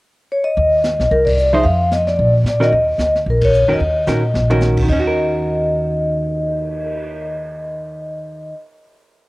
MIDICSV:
0, 0, Header, 1, 6, 480
1, 0, Start_track
1, 0, Key_signature, -6, "minor"
1, 0, Tempo, 270392
1, 1012, Time_signature, 4, 2, 24, 8
1, 16488, End_track
2, 0, Start_track
2, 0, Title_t, "Vibraphone"
2, 0, Program_c, 0, 11
2, 566, Note_on_c, 0, 73, 80
2, 684, Note_off_c, 0, 73, 0
2, 784, Note_on_c, 0, 75, 86
2, 1979, Note_on_c, 0, 70, 83
2, 1986, Note_off_c, 0, 75, 0
2, 2101, Note_off_c, 0, 70, 0
2, 2219, Note_on_c, 0, 74, 80
2, 2675, Note_off_c, 0, 74, 0
2, 2715, Note_on_c, 0, 76, 91
2, 2903, Note_off_c, 0, 76, 0
2, 2903, Note_on_c, 0, 77, 94
2, 3356, Note_off_c, 0, 77, 0
2, 3418, Note_on_c, 0, 75, 77
2, 3669, Note_off_c, 0, 75, 0
2, 3679, Note_on_c, 0, 74, 85
2, 4124, Note_off_c, 0, 74, 0
2, 4407, Note_on_c, 0, 74, 89
2, 4644, Note_off_c, 0, 74, 0
2, 4663, Note_on_c, 0, 75, 98
2, 5543, Note_off_c, 0, 75, 0
2, 5861, Note_on_c, 0, 70, 78
2, 5973, Note_off_c, 0, 70, 0
2, 6118, Note_on_c, 0, 73, 82
2, 6592, Note_off_c, 0, 73, 0
2, 6629, Note_on_c, 0, 75, 75
2, 8168, Note_off_c, 0, 75, 0
2, 8695, Note_on_c, 0, 75, 77
2, 15132, Note_off_c, 0, 75, 0
2, 16488, End_track
3, 0, Start_track
3, 0, Title_t, "Hollow-body jazz guitar"
3, 0, Program_c, 1, 26
3, 2716, Note_on_c, 1, 53, 59
3, 2731, Note_on_c, 1, 63, 69
3, 2737, Note_on_c, 1, 72, 74
3, 2744, Note_on_c, 1, 68, 65
3, 2898, Note_off_c, 1, 53, 0
3, 2905, Note_off_c, 1, 63, 0
3, 2908, Note_off_c, 1, 72, 0
3, 2912, Note_off_c, 1, 68, 0
3, 4617, Note_on_c, 1, 51, 58
3, 4618, Note_on_c, 1, 61, 60
3, 4631, Note_on_c, 1, 66, 58
3, 4633, Note_on_c, 1, 70, 61
3, 4806, Note_off_c, 1, 51, 0
3, 4807, Note_off_c, 1, 61, 0
3, 4813, Note_off_c, 1, 66, 0
3, 4814, Note_off_c, 1, 70, 0
3, 6538, Note_on_c, 1, 51, 55
3, 6546, Note_on_c, 1, 66, 58
3, 6550, Note_on_c, 1, 61, 56
3, 6550, Note_on_c, 1, 70, 62
3, 6728, Note_off_c, 1, 51, 0
3, 6732, Note_off_c, 1, 66, 0
3, 6734, Note_off_c, 1, 61, 0
3, 6734, Note_off_c, 1, 70, 0
3, 7231, Note_on_c, 1, 51, 53
3, 7239, Note_on_c, 1, 61, 56
3, 7246, Note_on_c, 1, 66, 58
3, 7252, Note_on_c, 1, 70, 61
3, 7488, Note_off_c, 1, 51, 0
3, 7492, Note_off_c, 1, 61, 0
3, 7496, Note_off_c, 1, 66, 0
3, 7499, Note_off_c, 1, 70, 0
3, 7989, Note_on_c, 1, 51, 67
3, 7997, Note_on_c, 1, 66, 66
3, 8004, Note_on_c, 1, 61, 65
3, 8006, Note_on_c, 1, 70, 70
3, 8541, Note_off_c, 1, 51, 0
3, 8562, Note_on_c, 1, 51, 55
3, 8642, Note_off_c, 1, 66, 0
3, 8645, Note_off_c, 1, 61, 0
3, 8646, Note_off_c, 1, 70, 0
3, 8740, Note_on_c, 1, 61, 60
3, 8871, Note_on_c, 1, 66, 60
3, 9006, Note_on_c, 1, 70, 59
3, 15136, Note_off_c, 1, 51, 0
3, 15226, Note_off_c, 1, 61, 0
3, 15291, Note_off_c, 1, 66, 0
3, 15358, Note_off_c, 1, 70, 0
3, 16488, End_track
4, 0, Start_track
4, 0, Title_t, "Upright bass"
4, 0, Program_c, 2, 32
4, 1012, Note_on_c, 2, 39, 82
4, 1714, Note_off_c, 2, 39, 0
4, 1763, Note_on_c, 2, 35, 64
4, 1950, Note_off_c, 2, 35, 0
4, 1971, Note_on_c, 2, 36, 78
4, 2876, Note_off_c, 2, 36, 0
4, 2920, Note_on_c, 2, 41, 76
4, 3829, Note_off_c, 2, 41, 0
4, 3883, Note_on_c, 2, 34, 78
4, 4319, Note_off_c, 2, 34, 0
4, 4330, Note_on_c, 2, 46, 72
4, 4788, Note_off_c, 2, 46, 0
4, 4834, Note_on_c, 2, 39, 76
4, 5281, Note_off_c, 2, 39, 0
4, 5289, Note_on_c, 2, 38, 66
4, 5748, Note_off_c, 2, 38, 0
4, 5789, Note_on_c, 2, 34, 73
4, 6389, Note_off_c, 2, 34, 0
4, 6419, Note_on_c, 2, 39, 57
4, 6569, Note_off_c, 2, 39, 0
4, 6579, Note_on_c, 2, 40, 63
4, 6737, Note_off_c, 2, 40, 0
4, 6746, Note_on_c, 2, 39, 80
4, 7199, Note_off_c, 2, 39, 0
4, 7222, Note_on_c, 2, 46, 66
4, 7678, Note_off_c, 2, 46, 0
4, 7704, Note_on_c, 2, 34, 72
4, 8628, Note_off_c, 2, 34, 0
4, 8669, Note_on_c, 2, 39, 86
4, 15119, Note_off_c, 2, 39, 0
4, 16488, End_track
5, 0, Start_track
5, 0, Title_t, "Cymbal swell"
5, 8964, Note_on_c, 9, 59, 42
5, 12414, Note_off_c, 9, 59, 0
5, 16488, End_track
6, 0, Start_track
6, 0, Title_t, "Drums"
6, 1015, Note_on_c, 9, 25, 43
6, 1016, Note_on_c, 9, 36, 29
6, 1193, Note_off_c, 9, 36, 0
6, 1487, Note_on_c, 9, 44, 54
6, 1496, Note_on_c, 9, 38, 52
6, 1665, Note_off_c, 9, 44, 0
6, 1674, Note_off_c, 9, 38, 0
6, 1773, Note_on_c, 9, 38, 31
6, 1950, Note_off_c, 9, 38, 0
6, 1973, Note_on_c, 9, 36, 27
6, 1983, Note_off_c, 9, 25, 0
6, 1983, Note_on_c, 9, 25, 40
6, 2150, Note_off_c, 9, 36, 0
6, 2244, Note_on_c, 9, 51, 72
6, 2253, Note_on_c, 9, 36, 80
6, 2422, Note_off_c, 9, 51, 0
6, 2431, Note_off_c, 9, 36, 0
6, 2448, Note_on_c, 9, 44, 45
6, 2625, Note_off_c, 9, 44, 0
6, 2927, Note_on_c, 9, 36, 30
6, 2932, Note_off_c, 9, 25, 0
6, 2932, Note_on_c, 9, 25, 43
6, 3104, Note_off_c, 9, 36, 0
6, 3391, Note_on_c, 9, 44, 51
6, 3400, Note_on_c, 9, 38, 53
6, 3569, Note_off_c, 9, 44, 0
6, 3577, Note_off_c, 9, 38, 0
6, 3679, Note_on_c, 9, 38, 33
6, 3857, Note_off_c, 9, 38, 0
6, 3879, Note_off_c, 9, 25, 0
6, 3879, Note_on_c, 9, 25, 41
6, 3881, Note_on_c, 9, 36, 27
6, 4058, Note_off_c, 9, 36, 0
6, 4357, Note_on_c, 9, 44, 48
6, 4366, Note_on_c, 9, 38, 53
6, 4535, Note_off_c, 9, 44, 0
6, 4544, Note_off_c, 9, 38, 0
6, 4647, Note_on_c, 9, 38, 37
6, 4825, Note_off_c, 9, 38, 0
6, 4838, Note_on_c, 9, 36, 28
6, 4839, Note_off_c, 9, 25, 0
6, 4839, Note_on_c, 9, 25, 42
6, 5015, Note_off_c, 9, 36, 0
6, 5303, Note_on_c, 9, 44, 54
6, 5312, Note_on_c, 9, 38, 59
6, 5480, Note_off_c, 9, 44, 0
6, 5489, Note_off_c, 9, 38, 0
6, 5600, Note_on_c, 9, 38, 32
6, 5777, Note_off_c, 9, 38, 0
6, 5785, Note_off_c, 9, 25, 0
6, 5785, Note_on_c, 9, 25, 43
6, 5795, Note_on_c, 9, 36, 28
6, 5972, Note_off_c, 9, 36, 0
6, 6055, Note_on_c, 9, 51, 69
6, 6074, Note_on_c, 9, 36, 70
6, 6232, Note_off_c, 9, 51, 0
6, 6251, Note_off_c, 9, 36, 0
6, 6271, Note_on_c, 9, 44, 41
6, 6449, Note_off_c, 9, 44, 0
6, 6754, Note_off_c, 9, 25, 0
6, 6754, Note_on_c, 9, 25, 42
6, 6758, Note_on_c, 9, 36, 30
6, 6935, Note_off_c, 9, 36, 0
6, 7221, Note_on_c, 9, 44, 46
6, 7230, Note_on_c, 9, 38, 42
6, 7399, Note_off_c, 9, 44, 0
6, 7407, Note_off_c, 9, 38, 0
6, 7724, Note_on_c, 9, 38, 61
6, 7902, Note_off_c, 9, 38, 0
6, 7996, Note_on_c, 9, 47, 65
6, 8081, Note_off_c, 9, 25, 0
6, 8174, Note_off_c, 9, 47, 0
6, 8176, Note_on_c, 9, 44, 43
6, 8185, Note_on_c, 9, 38, 44
6, 8354, Note_off_c, 9, 44, 0
6, 8362, Note_off_c, 9, 38, 0
6, 8465, Note_on_c, 9, 49, 64
6, 8480, Note_on_c, 9, 36, 72
6, 8643, Note_off_c, 9, 49, 0
6, 8657, Note_off_c, 9, 36, 0
6, 8679, Note_on_c, 9, 49, 57
6, 8682, Note_on_c, 9, 36, 52
6, 8856, Note_off_c, 9, 49, 0
6, 8859, Note_off_c, 9, 36, 0
6, 16488, End_track
0, 0, End_of_file